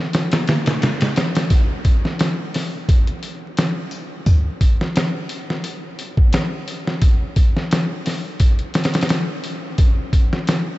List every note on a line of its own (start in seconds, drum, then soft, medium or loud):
0.13 snare loud
0.13 open hi-hat medium
0.32 snare loud
0.32 open hi-hat medium
0.47 snare loud
0.47 open hi-hat medium
0.66 snare medium
0.66 open hi-hat medium
0.82 snare loud
0.82 open hi-hat medium
1.01 snare loud
1.01 open hi-hat medium
1.16 snare loud
1.16 open hi-hat medium
1.35 snare medium
1.35 open hi-hat medium
1.50 kick loud
1.50 open hi-hat medium
1.85 kick loud
1.85 open hi-hat medium
2.05 snare soft
2.19 snare loud
2.19 open hi-hat medium
2.54 snare soft
2.54 open hi-hat medium
2.89 kick loud
2.89 open hi-hat medium
3.07 closed hi-hat soft
3.23 open hi-hat medium
3.57 snare loud
3.57 open hi-hat medium
3.91 open hi-hat medium
4.26 kick loud
4.26 open hi-hat medium
4.61 kick medium
4.61 open hi-hat medium
4.81 snare soft
4.96 snare loud
4.96 open hi-hat medium
5.29 open hi-hat medium
5.50 snare soft
5.64 open hi-hat medium
5.99 open hi-hat medium
6.17 kick medium
6.33 snare loud
6.33 open hi-hat medium
6.68 open hi-hat medium
6.87 snare soft
7.02 kick loud
7.02 open hi-hat medium
7.36 kick medium
7.36 open hi-hat medium
7.57 snare soft
7.71 snare loud
7.71 open hi-hat medium
8.06 snare soft
8.06 open hi-hat medium
8.40 kick loud
8.40 open hi-hat medium
8.59 closed hi-hat soft
8.74 snare loud
8.74 open hi-hat medium
8.84 snare medium
8.84 open hi-hat medium
8.94 snare medium
8.94 open hi-hat medium
9.01 snare medium
9.01 open hi-hat medium
9.09 snare loud
9.09 open hi-hat medium
9.44 open hi-hat medium
9.78 kick loud
9.78 open hi-hat medium
10.13 kick medium
10.13 open hi-hat medium
10.33 snare soft
10.47 snare loud
10.47 open hi-hat medium